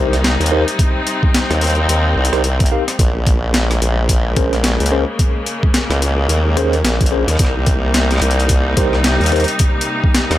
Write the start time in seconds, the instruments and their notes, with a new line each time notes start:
Already playing: wobble bass C2, string section C3 G3 A#3 D#4, tine electric piano D#4 G4 A#4 C5
0.13 cross-stick, closed hi-hat
0.24 snare, closed hi-hat
0.40 wobble bass D#2, closed hi-hat
0.46 closed hi-hat
0.52 tine electric piano D#4 G4 A#4 C5
0.68 closed hi-hat
0.79 string section C4, kick, closed hi-hat
1.07 closed hi-hat
1.23 kick
1.34 snare, closed hi-hat
1.50 wobble bass D#2, cross-stick, closed hi-hat
1.61 closed hi-hat
1.64 closed hi-hat
1.67 closed hi-hat
1.70 closed hi-hat
1.75 closed hi-hat
1.89 wobble bass D#2, closed hi-hat
2.16 wobble bass C2
2.25 closed hi-hat
2.33 wobble bass C2, tine electric piano D#4 G4 A#4 C5, cross-stick, closed hi-hat
2.44 closed hi-hat
2.60 kick, closed hi-hat
2.66 closed hi-hat
2.71 tine electric piano D#4 G4 A#4 F5
2.88 cross-stick, closed hi-hat
2.99 wobble bass A#1, string section C#3 G#3 A#3, kick, closed hi-hat
3.27 kick, closed hi-hat
3.54 snare, closed hi-hat
3.71 cross-stick, closed hi-hat
3.81 wobble bass A#1, closed hi-hat
4.09 kick, closed hi-hat
4.36 wobble bass A#1, tine electric piano C#4 G#4 A#4 C5, kick, closed hi-hat
4.53 cross-stick, closed hi-hat
4.64 snare, closed hi-hat
4.80 wobble bass C#2, closed hi-hat
4.86 closed hi-hat
4.91 tine electric piano C#4 G#4 A#4 C5
5.19 kick, closed hi-hat
5.46 closed hi-hat
5.63 kick
5.74 snare, closed hi-hat
5.90 wobble bass C#2, cross-stick, closed hi-hat
6.02 closed hi-hat
6.29 wobble bass D#2, closed hi-hat
6.57 tine electric piano C#4 G#4 A#4 C5, closed hi-hat
6.73 closed hi-hat
6.84 wobble bass A#1, snare, closed hi-hat
7.01 kick, closed hi-hat
7.06 closed hi-hat
7.12 tine electric piano C#4 G#4 A#4 C5
7.27 wobble bass D#2, cross-stick, closed hi-hat
7.36 wobble bass C2, kick, cross-stick, closed hi-hat
7.40 string section C3 G3 D#4
7.45 cross-stick
7.66 kick, closed hi-hat
7.94 snare, closed hi-hat
8.11 cross-stick, closed hi-hat
8.12 cross-stick
8.16 cross-stick
8.18 cross-stick
8.20 wobble bass C2, cross-stick, closed hi-hat
8.31 closed hi-hat
8.40 closed hi-hat
8.49 kick, closed hi-hat
8.77 wobble bass C2, tine electric piano D#4 G4 A#4 C5, kick, closed hi-hat
8.93 cross-stick
9.04 snare, closed hi-hat
9.20 wobble bass D#2, closed hi-hat
9.24 closed hi-hat
9.26 closed hi-hat
9.29 closed hi-hat
9.32 tine electric piano D#4 G4 A#4 C5, closed hi-hat
9.36 closed hi-hat
9.40 closed hi-hat
9.44 closed hi-hat
9.48 closed hi-hat
9.59 kick, closed hi-hat
9.81 closed hi-hat
10.04 kick
10.15 snare, closed hi-hat
10.31 wobble bass D#2, cross-stick, closed hi-hat